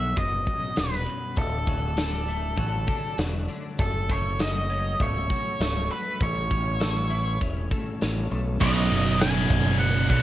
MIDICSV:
0, 0, Header, 1, 6, 480
1, 0, Start_track
1, 0, Tempo, 604839
1, 1094, Time_signature, 4, 2, 24, 8
1, 4933, Tempo, 598205
1, 8149, End_track
2, 0, Start_track
2, 0, Title_t, "Lead electric guitar"
2, 0, Program_c, 0, 29
2, 0, Note_on_c, 0, 76, 92
2, 139, Note_off_c, 0, 76, 0
2, 142, Note_on_c, 0, 75, 91
2, 612, Note_on_c, 0, 71, 75
2, 632, Note_off_c, 0, 75, 0
2, 1092, Note_off_c, 0, 71, 0
2, 1095, Note_on_c, 0, 69, 73
2, 2503, Note_off_c, 0, 69, 0
2, 3014, Note_on_c, 0, 69, 90
2, 3261, Note_off_c, 0, 69, 0
2, 3262, Note_on_c, 0, 73, 81
2, 3499, Note_off_c, 0, 73, 0
2, 3502, Note_on_c, 0, 75, 101
2, 3984, Note_off_c, 0, 75, 0
2, 3987, Note_on_c, 0, 73, 89
2, 4666, Note_off_c, 0, 73, 0
2, 4692, Note_on_c, 0, 71, 81
2, 4914, Note_off_c, 0, 71, 0
2, 4945, Note_on_c, 0, 73, 83
2, 5871, Note_off_c, 0, 73, 0
2, 6853, Note_on_c, 0, 75, 112
2, 7301, Note_off_c, 0, 75, 0
2, 7328, Note_on_c, 0, 80, 104
2, 7777, Note_off_c, 0, 80, 0
2, 7798, Note_on_c, 0, 78, 114
2, 8027, Note_off_c, 0, 78, 0
2, 8041, Note_on_c, 0, 78, 93
2, 8149, Note_off_c, 0, 78, 0
2, 8149, End_track
3, 0, Start_track
3, 0, Title_t, "Clean electric guitar"
3, 0, Program_c, 1, 27
3, 0, Note_on_c, 1, 35, 70
3, 0, Note_on_c, 1, 47, 55
3, 0, Note_on_c, 1, 54, 69
3, 128, Note_off_c, 1, 47, 0
3, 138, Note_on_c, 1, 47, 67
3, 372, Note_on_c, 1, 42, 58
3, 379, Note_off_c, 1, 35, 0
3, 605, Note_off_c, 1, 47, 0
3, 614, Note_on_c, 1, 47, 64
3, 851, Note_off_c, 1, 42, 0
3, 860, Note_on_c, 1, 42, 65
3, 1094, Note_off_c, 1, 47, 0
3, 1097, Note_off_c, 1, 42, 0
3, 1098, Note_on_c, 1, 38, 70
3, 1332, Note_off_c, 1, 54, 0
3, 1335, Note_on_c, 1, 54, 58
3, 1573, Note_on_c, 1, 62, 73
3, 1811, Note_on_c, 1, 57, 67
3, 2042, Note_off_c, 1, 54, 0
3, 2052, Note_on_c, 1, 54, 72
3, 2282, Note_on_c, 1, 50, 64
3, 2296, Note_off_c, 1, 38, 0
3, 2513, Note_off_c, 1, 54, 0
3, 2522, Note_on_c, 1, 54, 66
3, 2755, Note_off_c, 1, 50, 0
3, 2765, Note_on_c, 1, 50, 64
3, 2774, Note_off_c, 1, 62, 0
3, 3003, Note_on_c, 1, 42, 75
3, 3008, Note_off_c, 1, 54, 0
3, 3009, Note_off_c, 1, 50, 0
3, 3247, Note_off_c, 1, 57, 0
3, 3247, Note_on_c, 1, 57, 62
3, 3488, Note_on_c, 1, 66, 69
3, 3728, Note_on_c, 1, 61, 66
3, 3956, Note_off_c, 1, 57, 0
3, 3966, Note_on_c, 1, 57, 68
3, 4206, Note_on_c, 1, 54, 58
3, 4207, Note_off_c, 1, 42, 0
3, 4439, Note_off_c, 1, 57, 0
3, 4449, Note_on_c, 1, 57, 65
3, 4679, Note_off_c, 1, 54, 0
3, 4688, Note_on_c, 1, 54, 57
3, 4689, Note_off_c, 1, 66, 0
3, 4928, Note_off_c, 1, 61, 0
3, 4928, Note_on_c, 1, 45, 71
3, 4929, Note_off_c, 1, 54, 0
3, 4929, Note_off_c, 1, 57, 0
3, 5162, Note_on_c, 1, 61, 62
3, 5402, Note_on_c, 1, 69, 71
3, 5644, Note_on_c, 1, 64, 67
3, 5884, Note_off_c, 1, 61, 0
3, 5893, Note_on_c, 1, 61, 66
3, 6133, Note_on_c, 1, 57, 65
3, 6135, Note_off_c, 1, 45, 0
3, 6367, Note_off_c, 1, 61, 0
3, 6377, Note_on_c, 1, 61, 62
3, 6606, Note_off_c, 1, 57, 0
3, 6611, Note_off_c, 1, 69, 0
3, 6616, Note_on_c, 1, 57, 58
3, 6851, Note_off_c, 1, 64, 0
3, 6856, Note_off_c, 1, 57, 0
3, 6856, Note_off_c, 1, 61, 0
3, 8149, End_track
4, 0, Start_track
4, 0, Title_t, "Distorted electric guitar"
4, 0, Program_c, 2, 30
4, 6852, Note_on_c, 2, 35, 97
4, 6867, Note_on_c, 2, 42, 100
4, 6881, Note_on_c, 2, 47, 105
4, 8034, Note_off_c, 2, 47, 0
4, 8035, Note_off_c, 2, 35, 0
4, 8042, Note_off_c, 2, 42, 0
4, 8044, Note_on_c, 2, 47, 92
4, 8064, Note_on_c, 2, 42, 79
4, 8072, Note_on_c, 2, 35, 74
4, 8149, Note_off_c, 2, 35, 0
4, 8149, Note_off_c, 2, 42, 0
4, 8149, Note_off_c, 2, 47, 0
4, 8149, End_track
5, 0, Start_track
5, 0, Title_t, "Fingered electric bass"
5, 0, Program_c, 3, 33
5, 0, Note_on_c, 3, 35, 92
5, 104, Note_off_c, 3, 35, 0
5, 135, Note_on_c, 3, 30, 81
5, 355, Note_off_c, 3, 30, 0
5, 619, Note_on_c, 3, 27, 84
5, 837, Note_off_c, 3, 27, 0
5, 1088, Note_on_c, 3, 26, 98
5, 2019, Note_off_c, 3, 26, 0
5, 2046, Note_on_c, 3, 33, 79
5, 2270, Note_off_c, 3, 33, 0
5, 2525, Note_on_c, 3, 28, 82
5, 2750, Note_off_c, 3, 28, 0
5, 3007, Note_on_c, 3, 30, 102
5, 3938, Note_off_c, 3, 30, 0
5, 3966, Note_on_c, 3, 25, 86
5, 4189, Note_off_c, 3, 25, 0
5, 4443, Note_on_c, 3, 25, 86
5, 4667, Note_off_c, 3, 25, 0
5, 4926, Note_on_c, 3, 33, 96
5, 5861, Note_off_c, 3, 33, 0
5, 5893, Note_on_c, 3, 28, 80
5, 6115, Note_off_c, 3, 28, 0
5, 6381, Note_on_c, 3, 33, 78
5, 6595, Note_off_c, 3, 33, 0
5, 6617, Note_on_c, 3, 35, 79
5, 6832, Note_off_c, 3, 35, 0
5, 6857, Note_on_c, 3, 35, 90
5, 7077, Note_off_c, 3, 35, 0
5, 7100, Note_on_c, 3, 30, 98
5, 7544, Note_off_c, 3, 30, 0
5, 7569, Note_on_c, 3, 30, 109
5, 8017, Note_off_c, 3, 30, 0
5, 8045, Note_on_c, 3, 35, 91
5, 8149, Note_off_c, 3, 35, 0
5, 8149, End_track
6, 0, Start_track
6, 0, Title_t, "Drums"
6, 134, Note_on_c, 9, 42, 68
6, 135, Note_on_c, 9, 36, 74
6, 214, Note_off_c, 9, 42, 0
6, 215, Note_off_c, 9, 36, 0
6, 366, Note_on_c, 9, 42, 64
6, 373, Note_on_c, 9, 36, 82
6, 446, Note_off_c, 9, 42, 0
6, 452, Note_off_c, 9, 36, 0
6, 606, Note_on_c, 9, 42, 73
6, 613, Note_on_c, 9, 38, 96
6, 685, Note_off_c, 9, 42, 0
6, 692, Note_off_c, 9, 38, 0
6, 732, Note_on_c, 9, 38, 28
6, 811, Note_off_c, 9, 38, 0
6, 844, Note_on_c, 9, 42, 61
6, 924, Note_off_c, 9, 42, 0
6, 1083, Note_on_c, 9, 42, 72
6, 1089, Note_on_c, 9, 36, 89
6, 1162, Note_off_c, 9, 42, 0
6, 1169, Note_off_c, 9, 36, 0
6, 1323, Note_on_c, 9, 42, 59
6, 1328, Note_on_c, 9, 36, 81
6, 1403, Note_off_c, 9, 42, 0
6, 1407, Note_off_c, 9, 36, 0
6, 1563, Note_on_c, 9, 42, 80
6, 1570, Note_on_c, 9, 38, 97
6, 1643, Note_off_c, 9, 42, 0
6, 1650, Note_off_c, 9, 38, 0
6, 1797, Note_on_c, 9, 42, 59
6, 1876, Note_off_c, 9, 42, 0
6, 2036, Note_on_c, 9, 42, 73
6, 2044, Note_on_c, 9, 36, 72
6, 2115, Note_off_c, 9, 42, 0
6, 2124, Note_off_c, 9, 36, 0
6, 2280, Note_on_c, 9, 42, 57
6, 2285, Note_on_c, 9, 36, 83
6, 2359, Note_off_c, 9, 42, 0
6, 2365, Note_off_c, 9, 36, 0
6, 2524, Note_on_c, 9, 42, 73
6, 2531, Note_on_c, 9, 38, 96
6, 2603, Note_off_c, 9, 42, 0
6, 2611, Note_off_c, 9, 38, 0
6, 2768, Note_on_c, 9, 42, 58
6, 2847, Note_off_c, 9, 42, 0
6, 3003, Note_on_c, 9, 42, 68
6, 3007, Note_on_c, 9, 36, 93
6, 3083, Note_off_c, 9, 42, 0
6, 3086, Note_off_c, 9, 36, 0
6, 3247, Note_on_c, 9, 42, 56
6, 3249, Note_on_c, 9, 36, 82
6, 3327, Note_off_c, 9, 42, 0
6, 3328, Note_off_c, 9, 36, 0
6, 3486, Note_on_c, 9, 42, 72
6, 3493, Note_on_c, 9, 38, 98
6, 3565, Note_off_c, 9, 42, 0
6, 3572, Note_off_c, 9, 38, 0
6, 3729, Note_on_c, 9, 42, 54
6, 3809, Note_off_c, 9, 42, 0
6, 3966, Note_on_c, 9, 42, 70
6, 3967, Note_on_c, 9, 36, 78
6, 4046, Note_off_c, 9, 42, 0
6, 4047, Note_off_c, 9, 36, 0
6, 4207, Note_on_c, 9, 36, 78
6, 4207, Note_on_c, 9, 42, 62
6, 4286, Note_off_c, 9, 36, 0
6, 4286, Note_off_c, 9, 42, 0
6, 4449, Note_on_c, 9, 42, 78
6, 4456, Note_on_c, 9, 38, 93
6, 4528, Note_off_c, 9, 42, 0
6, 4535, Note_off_c, 9, 38, 0
6, 4689, Note_on_c, 9, 42, 55
6, 4769, Note_off_c, 9, 42, 0
6, 4925, Note_on_c, 9, 42, 75
6, 4926, Note_on_c, 9, 36, 100
6, 5005, Note_off_c, 9, 42, 0
6, 5007, Note_off_c, 9, 36, 0
6, 5169, Note_on_c, 9, 36, 86
6, 5171, Note_on_c, 9, 42, 66
6, 5249, Note_off_c, 9, 36, 0
6, 5252, Note_off_c, 9, 42, 0
6, 5407, Note_on_c, 9, 42, 78
6, 5414, Note_on_c, 9, 38, 96
6, 5487, Note_off_c, 9, 42, 0
6, 5494, Note_off_c, 9, 38, 0
6, 5651, Note_on_c, 9, 42, 64
6, 5732, Note_off_c, 9, 42, 0
6, 5894, Note_on_c, 9, 36, 69
6, 5897, Note_on_c, 9, 42, 73
6, 5974, Note_off_c, 9, 36, 0
6, 5977, Note_off_c, 9, 42, 0
6, 6134, Note_on_c, 9, 36, 88
6, 6135, Note_on_c, 9, 42, 64
6, 6214, Note_off_c, 9, 36, 0
6, 6215, Note_off_c, 9, 42, 0
6, 6374, Note_on_c, 9, 42, 74
6, 6382, Note_on_c, 9, 38, 96
6, 6455, Note_off_c, 9, 42, 0
6, 6462, Note_off_c, 9, 38, 0
6, 6618, Note_on_c, 9, 42, 54
6, 6698, Note_off_c, 9, 42, 0
6, 6850, Note_on_c, 9, 49, 111
6, 6855, Note_on_c, 9, 36, 107
6, 6930, Note_off_c, 9, 49, 0
6, 6935, Note_off_c, 9, 36, 0
6, 7100, Note_on_c, 9, 51, 78
6, 7180, Note_off_c, 9, 51, 0
6, 7331, Note_on_c, 9, 51, 93
6, 7338, Note_on_c, 9, 38, 115
6, 7411, Note_off_c, 9, 51, 0
6, 7419, Note_off_c, 9, 38, 0
6, 7570, Note_on_c, 9, 36, 95
6, 7573, Note_on_c, 9, 51, 73
6, 7650, Note_off_c, 9, 36, 0
6, 7653, Note_off_c, 9, 51, 0
6, 7811, Note_on_c, 9, 51, 103
6, 7891, Note_off_c, 9, 51, 0
6, 8047, Note_on_c, 9, 51, 88
6, 8048, Note_on_c, 9, 36, 94
6, 8127, Note_off_c, 9, 51, 0
6, 8128, Note_off_c, 9, 36, 0
6, 8149, End_track
0, 0, End_of_file